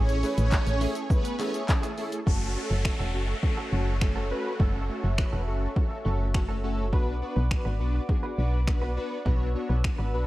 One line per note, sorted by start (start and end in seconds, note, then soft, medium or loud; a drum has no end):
0.00 0.24 A1 loud
0.00 0.10 E3 loud
0.00 0.11 A3 medium
0.00 0.15 A3 loud
0.00 0.11 C#4 loud
0.00 0.15 C#4 medium
0.00 0.15 E4 medium
0.00 0.11 G#4 loud
0.00 0.15 G#4 medium
0.00 0.16 A4 loud
0.00 2.23 A4 medium
0.00 2.25 E5 medium
0.00 2.25 G#5 medium
0.00 2.25 C#6 loud
0.09 closed hi-hat medium
0.09 shaker medium
0.22 0.36 E3 medium
0.22 0.44 A3 loud
0.22 0.36 A3 medium
0.22 0.44 C#4 medium
0.22 0.36 C#4 medium
0.22 0.45 E4 medium
0.22 0.45 G#4 medium
0.22 0.36 G#4 medium
0.22 0.45 B4 loud
0.22 open hi-hat medium
0.22 shaker medium
0.37 0.58 A1 loud
0.37 0.50 E3 medium
0.37 0.51 A3 medium
0.37 0.51 C#4 medium
0.37 0.79 C#4 medium
0.37 0.50 G#4 medium
0.37 0.79 C#5 medium
0.37 closed hi-hat medium
0.37 shaker medium
0.52 0.74 A3 medium
0.52 0.74 C#4 medium
0.52 0.74 E4 medium
0.52 0.74 G#4 medium
0.52 0.74 A4 medium
0.52 kick loud
0.52 clap medium
0.52 clap loud
0.52 shaker medium
0.66 0.87 A1 medium
0.66 muted clean electric guitar stroke medium
0.66 closed hi-hat medium
0.66 shaker medium
0.81 0.96 E3 medium
0.81 1.03 A3 medium
0.81 0.95 A3 loud
0.81 1.03 C#4 medium
0.81 0.95 C#4 medium
0.81 1.03 E4 medium
0.81 1.03 G#4 medium
0.81 0.94 G#4 loud
0.81 1.03 A4 medium
0.81 open hi-hat medium
0.81 shaker medium
0.95 1.09 E3 medium
0.95 1.09 A3 medium
0.95 1.09 C#4 medium
0.95 1.09 G#4 medium
0.95 closed hi-hat medium
0.95 shaker medium
1.10 1.32 A3 medium
1.10 1.32 C#4 medium
1.10 1.32 E4 medium
1.10 1.32 G#4 medium
1.10 1.32 B4 medium
1.10 muted clean electric guitar stroke soft
1.10 kick loud
1.10 shaker medium
1.24 muted clean electric guitar stroke medium
1.24 closed hi-hat medium
1.24 shaker medium
1.39 1.54 E3 medium
1.39 1.61 A3 medium
1.39 1.53 A3 medium
1.39 1.61 C#4 medium
1.39 1.53 C#4 loud
1.39 1.61 E4 medium
1.39 1.61 G#4 medium
1.39 1.52 G#4 medium
1.39 1.61 A4 medium
1.39 clap medium
1.39 open hi-hat medium
1.39 shaker medium
1.53 1.67 E3 soft
1.53 1.68 A3 medium
1.53 1.67 C#4 medium
1.53 1.67 G#4 medium
1.53 closed hi-hat medium
1.53 shaker medium
1.69 1.90 A3 loud
1.69 1.90 C#4 loud
1.69 1.90 E4 loud
1.69 1.90 G#4 loud
1.69 1.90 A4 loud
1.69 kick loud
1.69 clap loud
1.69 shaker medium
1.83 1.96 E3 medium
1.83 1.97 A3 medium
1.83 1.97 C#4 medium
1.83 1.97 G#4 medium
1.83 closed hi-hat medium
1.83 shaker medium
1.97 2.11 E3 medium
1.97 2.19 A3 medium
1.97 2.11 A3 medium
1.97 2.19 C#4 medium
1.97 2.11 C#4 medium
1.97 2.19 E4 medium
1.97 2.19 G#4 medium
1.97 2.11 G#4 medium
1.97 2.19 A4 loud
1.97 open hi-hat medium
1.97 shaker soft
2.12 muted clean electric guitar stroke soft
2.12 closed hi-hat medium
2.12 shaker medium
2.26 2.57 F#1 loud
2.26 2.53 A3 medium
2.26 2.48 A3 loud
2.26 2.48 C#4 loud
2.26 2.54 C#4 medium
2.26 2.48 F#4 loud
2.26 2.54 F#4 medium
2.26 6.89 A4 medium
2.26 2.48 A4 loud
2.26 2.54 A4 medium
2.26 6.89 C#5 medium
2.26 4.58 F#5 medium
2.26 6.89 C#6 medium
2.26 kick loud
2.26 downlifter medium
2.56 2.77 A3 medium
2.56 2.77 C#4 medium
2.56 2.78 F#4 medium
2.56 2.78 A4 loud
2.56 muted clean electric guitar stroke soft
2.70 2.91 F#1 medium
2.70 2.84 A3 medium
2.70 2.84 C#4 medium
2.70 2.84 F#4 medium
2.70 2.83 A4 medium
2.85 3.07 A3 medium
2.85 3.07 C#4 medium
2.85 3.07 F#4 medium
2.85 3.07 A4 loud
2.85 finger snap loud
2.85 muted clean electric guitar stroke soft
2.85 kick loud
2.99 3.16 E1 medium
2.99 3.13 A3 medium
2.99 3.13 C#4 medium
2.99 3.14 F#4 medium
2.99 3.14 A4 medium
3.14 3.34 F#1 medium
3.14 3.36 A3 medium
3.14 3.36 C#4 medium
3.14 3.36 F#4 medium
3.14 3.36 A4 medium
3.14 muted clean electric guitar stroke soft
3.29 muted clean electric guitar stroke soft
3.43 3.65 A3 medium
3.43 3.65 C#4 medium
3.43 3.65 F#4 medium
3.43 3.65 A4 loud
3.43 muted clean electric guitar stroke soft
3.43 kick loud
3.57 3.71 A3 medium
3.57 3.71 C#4 medium
3.57 3.72 F#4 medium
3.57 3.72 A4 medium
3.72 4.33 F#1 loud
3.72 3.94 A3 medium
3.72 3.94 C#4 medium
3.72 3.94 F#4 medium
3.72 3.94 A4 loud
3.72 muted clean electric guitar stroke soft
3.87 muted clean electric guitar stroke soft
4.01 4.23 A3 loud
4.01 4.23 C#4 loud
4.01 4.23 F#4 loud
4.01 4.23 A4 loud
4.01 finger snap loud
4.01 muted clean electric guitar stroke soft
4.01 kick loud
4.16 4.29 A3 medium
4.16 4.30 C#4 medium
4.16 4.30 F#4 medium
4.16 4.30 A4 loud
4.30 4.52 A3 loud
4.30 4.52 C#4 loud
4.30 4.52 F#4 loud
4.30 4.52 B4 loud
4.30 muted clean electric guitar stroke soft
4.45 muted clean electric guitar stroke medium
4.59 4.90 F#1 loud
4.59 4.87 A3 medium
4.59 4.81 A3 loud
4.59 4.81 C#4 loud
4.59 4.87 C#4 loud
4.59 4.81 F#4 loud
4.59 4.87 F#4 medium
4.59 4.82 A4 loud
4.59 4.87 A4 loud
4.59 6.91 E5 medium
4.59 kick loud
4.89 5.10 A3 medium
4.89 5.11 C#4 medium
4.89 5.11 F#4 medium
4.89 5.11 A4 loud
4.89 muted clean electric guitar stroke soft
5.03 5.24 F#1 medium
5.03 5.17 A3 medium
5.03 5.17 C#4 medium
5.03 5.17 F#4 medium
5.03 5.17 A4 medium
5.18 5.40 A3 loud
5.18 5.40 C#4 medium
5.18 5.40 F#4 medium
5.18 5.40 B4 loud
5.18 finger snap loud
5.18 muted clean electric guitar stroke soft
5.18 kick loud
5.32 5.49 E1 medium
5.32 5.46 A3 medium
5.32 5.46 C#4 medium
5.32 5.47 F#4 medium
5.32 5.47 A4 medium
5.47 5.67 F#1 medium
5.47 5.69 A3 medium
5.47 5.69 C#4 medium
5.47 5.69 F#4 medium
5.47 5.69 A4 loud
5.47 muted clean electric guitar stroke soft
5.62 muted clean electric guitar stroke soft
5.76 5.98 A3 medium
5.76 5.98 C#4 medium
5.76 5.98 F#4 medium
5.76 5.98 A4 loud
5.76 muted clean electric guitar stroke soft
5.76 kick loud
5.91 muted clean electric guitar stroke soft
6.05 6.94 F#1 loud
6.05 6.22 A3 medium
6.05 6.27 A3 medium
6.05 6.27 C#4 medium
6.05 6.20 C#4 medium
6.05 6.27 F#4 medium
6.05 6.19 F#4 medium
6.05 6.27 A4 loud
6.05 6.19 A4 medium
6.20 muted clean electric guitar stroke soft
6.34 6.56 A3 loud
6.34 6.56 C#4 loud
6.34 6.56 F#4 loud
6.34 6.56 A4 loud
6.34 finger snap loud
6.34 muted clean electric guitar stroke soft
6.34 kick loud
6.49 6.62 A3 medium
6.49 6.63 C#4 medium
6.49 6.63 F#4 medium
6.49 6.63 A4 medium
6.63 6.85 A3 loud
6.63 6.85 C#4 loud
6.63 6.85 F#4 loud
6.63 6.85 A4 loud
6.63 muted clean electric guitar stroke soft
6.78 muted clean electric guitar stroke soft
6.92 7.23 B1 loud
6.92 7.19 B3 medium
6.92 7.14 B3 loud
6.92 7.14 D4 loud
6.92 7.20 D4 medium
6.92 7.14 F#4 loud
6.92 7.20 F#4 medium
6.92 10.27 B4 medium
6.92 7.14 B4 loud
6.92 7.20 B4 medium
6.92 10.27 D5 medium
6.92 10.27 F#5 medium
6.92 9.24 D6 medium
6.92 kick loud
7.22 7.43 B3 medium
7.22 7.43 D4 medium
7.22 7.43 F#4 medium
7.22 7.44 B4 loud
7.22 muted clean electric guitar stroke soft
7.36 7.57 B1 medium
7.36 7.50 B3 medium
7.36 7.50 D4 medium
7.36 7.50 F#4 medium
7.36 7.50 B4 medium
7.51 7.72 B3 medium
7.51 7.73 D4 medium
7.51 7.73 F#4 medium
7.51 7.73 B4 loud
7.51 finger snap loud
7.51 muted clean electric guitar stroke soft
7.51 kick loud
7.65 7.82 G#1 medium
7.65 7.79 B3 medium
7.65 7.79 D4 medium
7.65 7.79 F#4 medium
7.65 7.80 B4 medium
7.80 8.00 B1 medium
7.80 8.02 B3 medium
7.80 8.02 D4 medium
7.80 8.02 F#4 medium
7.80 8.02 B4 medium
7.80 muted clean electric guitar stroke medium
7.94 muted clean electric guitar stroke medium
8.09 8.31 B3 medium
8.09 8.31 D4 medium
8.09 8.31 F#4 medium
8.09 8.31 G#4 loud
8.09 muted clean electric guitar stroke soft
8.09 kick loud
8.23 8.37 B3 medium
8.23 8.37 D4 medium
8.23 8.38 F#4 medium
8.23 8.38 B4 medium
8.38 8.99 B1 loud
8.38 8.60 B3 medium
8.38 8.60 D4 medium
8.38 8.60 F#4 medium
8.38 8.60 B4 loud
8.38 muted clean electric guitar stroke soft
8.53 muted clean electric guitar stroke soft
8.67 8.89 B3 loud
8.67 8.89 D4 loud
8.67 8.89 F#4 loud
8.67 8.89 B4 loud
8.67 finger snap loud
8.67 muted clean electric guitar stroke soft
8.67 kick loud
8.82 8.95 B3 medium
8.82 8.96 D4 medium
8.82 8.96 F#4 medium
8.82 8.96 B4 medium
8.96 9.18 B3 loud
8.96 9.18 D4 loud
8.96 9.18 F#4 loud
8.96 9.18 B4 loud
8.96 muted clean electric guitar stroke soft
9.11 muted clean electric guitar stroke soft
9.25 9.56 B1 loud
9.25 9.52 B3 medium
9.25 9.47 B3 loud
9.25 9.47 D4 loud
9.25 9.53 D4 medium
9.25 9.47 F#4 loud
9.25 9.53 F#4 medium
9.25 9.53 B4 medium
9.25 9.47 C#5 loud
9.25 10.27 E6 medium
9.25 kick loud
9.55 9.76 B3 medium
9.55 9.76 D4 medium
9.55 9.77 F#4 medium
9.55 9.77 C#5 loud
9.55 muted clean electric guitar stroke soft
9.69 9.90 B1 medium
9.69 9.83 B3 medium
9.69 9.83 D4 medium
9.69 9.83 F#4 medium
9.69 9.83 B4 medium
9.84 10.06 B3 medium
9.84 10.06 D4 medium
9.84 10.06 F#4 medium
9.84 10.06 B4 loud
9.84 finger snap loud
9.84 muted clean electric guitar stroke soft
9.84 kick loud
9.98 10.15 G#1 medium
9.98 10.12 B3 medium
9.98 10.12 D4 medium
9.98 10.13 F#4 medium
9.98 10.13 B4 medium
10.13 10.27 B1 medium
10.13 10.27 B3 medium
10.13 10.27 D4 medium
10.13 10.27 F#4 medium
10.13 10.27 B4 loud
10.13 muted clean electric guitar stroke soft